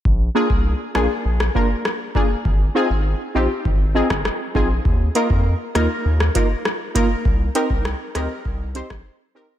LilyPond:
<<
  \new Staff \with { instrumentName = "Synth stab" } { \time 4/4 \key bes \mixolydian \tempo 4 = 100 r8 <bes d' f' aes'>8 r8 <bes d' f' aes'>8 r8 <bes d' f' bes'>8 r8 <bes d' f' aes'>8 | r8 <c' ees' f' aes'>8 r8 <c' ees' f' g'>8 r8 <c' ees' f' aes'>8 r8 <c' ees' f' aes'>8 | r8 <bes ees' f' bes'>8 r8 <bes ees' f' bes'>8 r8 <bes ees' f' bes'>8 r8 <bes ees' f' bes'>8 | r8 <c' ees' g' bes'>8 r8 <c' ees' g' bes'>8 r8 <c' ees' g' c''>8 r8 <c' ees' g' bes'>8 | }
  \new Staff \with { instrumentName = "Analog synth bass" } { \clef bass \time 4/4 \key bes \mixolydian bes,,8 r16 c,8 r16 bes,,16 r16 bes,,8 r4. | aes,,8 r16 aes,,8 r16 bes,,16 r16 aes,,8. g,,16 r8 bes,,8 | ees,8 r16 f,8 r16 ees,16 r16 ees,8 r4. | c,8 r16 c,8 r16 d,16 r16 c,8. bes,,16 r4 | }
  \new DrumStaff \with { instrumentName = "Drums" } \drummode { \time 4/4 bd8. bd16 r8 ss8 r16 ss16 bd8 ss8 bd8 | bd4 r4 bd8. <bd ss>16 ss8 bd8 | bd8 hh16 bd16 r8 <hh ss>8 r16 ss16 <hh bd>8 ss8 <hh bd>8 | bd8 hh16 bd16 ss8 <hh ss>8 bd8 hh16 <bd ss>16 r4 | }
>>